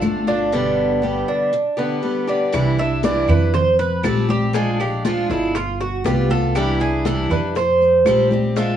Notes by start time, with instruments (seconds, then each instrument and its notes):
Already playing: cuban tres A4
0.01 upright bass G1, steel-string acoustic guitar D3 A3 D4 F4, high bongo, low bongo, high conga, claves, maracas
0.27 steel-string acoustic guitar A3 D4 F4, cuban tres D4, high bongo, high conga, maracas
0.52 steel-string acoustic guitar B2 D3 G3 B3 G4, cuban tres D4
1.02 steel-string acoustic guitar D3 G3 B3 G4, cuban tres G4
1.28 cuban tres D4
1.53 muted steel-string acoustic guitar stroke
1.77 steel-string acoustic guitar D3 G3 B3 G4, cuban tres B4
2.02 steel-string acoustic guitar D3 G3 B3 G4
2.28 steel-string acoustic guitar D3 G3 B3 G4, cuban tres D5
2.52 upright bass C2, steel-string acoustic guitar C3 E3 G3 D4 E4, high bongo, high conga, claves, maracas
2.78 steel-string acoustic guitar G3 D4 E4, cuban tres E5, high conga, maracas
3.03 steel-string acoustic guitar C3 E3 G3 D4 E4, cuban tres D5, high bongo, high conga, maracas
3.28 upright bass F2, steel-string acoustic guitar G3 D4 E4, cuban tres B4, high conga, low conga, claves, maracas
3.54 cuban tres C5, muted steel-string acoustic guitar stroke, high bongo, high conga, low conga, maracas
3.79 cuban tres B4, high conga, maracas
4.03 upright bass A#1, steel-string acoustic guitar F3 G3 C4 G4, cuban tres A4, high bongo, low bongo, high conga, claves, maracas
4.29 steel-string acoustic guitar G3 C4 G4, cuban tres G4, high conga, maracas
4.53 steel-string acoustic guitar F3 G#3 D4 F4, cuban tres G#4, high bongo, high conga, maracas
4.80 steel-string acoustic guitar G#3 D4 F4, cuban tres G4, high bongo, high conga, claves, maracas
5.05 steel-string acoustic guitar F3 G#3 D4 F4, cuban tres F4, high bongo, high conga, maracas
5.29 upright bass G1, steel-string acoustic guitar G#3 D4 F4, cuban tres E4, high bongo, high conga, maracas
5.55 cuban tres F4, muted steel-string acoustic guitar stroke, high bongo, high conga, claves, maracas
5.80 cuban tres F#4, high bongo, high conga, maracas
6.04 upright bass C2, steel-string acoustic guitar G3 B3 F4, cuban tres G4, high bongo, low bongo, high conga, maracas
6.30 steel-string acoustic guitar B3 F4, cuban tres A4, high conga, maracas
6.55 steel-string acoustic guitar C3 E3 G3 D4 E4, cuban tres G4, high bongo, high conga, claves, maracas
6.80 steel-string acoustic guitar G3 D4 E4, cuban tres G#4, high conga, maracas
7.05 steel-string acoustic guitar C3 E3 G3 D4 E4, cuban tres A4, high bongo, high conga, maracas
7.30 upright bass F2, steel-string acoustic guitar G3 D4 E4, cuban tres B4, high conga, low conga, claves, maracas
7.55 cuban tres C5, muted steel-string acoustic guitar stroke, high bongo, high conga, maracas
7.81 high conga, maracas
8.05 upright bass A#1, steel-string acoustic guitar F3 G3 C4 G4, high bongo, low bongo, high conga, claves, maracas
8.31 steel-string acoustic guitar G3 C4 G4, high conga, maracas
8.56 steel-string acoustic guitar F3 G#3 D4 F4, cuban tres E5, high bongo, high conga, maracas